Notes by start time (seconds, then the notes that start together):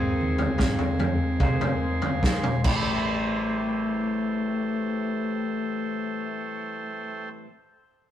Already playing: G#2 G#3 A#3 C4 D#4 G#4 A#4 C5 G#5 C6
0.21 D#2, low conga
0.38 floor tom, high conga
0.58 G#2, kick, snare, floor tom, low conga
0.79 floor tom, high conga
0.99 F2, floor tom, high conga, low conga
1.40 C3 G#3 A#3 D#4 G#4 C5, kick, floor tom
1.60 floor tom, high conga
2.02 floor tom
2.23 kick, snare
2.44 floor tom, mid tom
2.64 A1 A2 E3 G3 A3 C4 E4 A4 C5 E5 G5, kick, crash, high conga
2.68 C5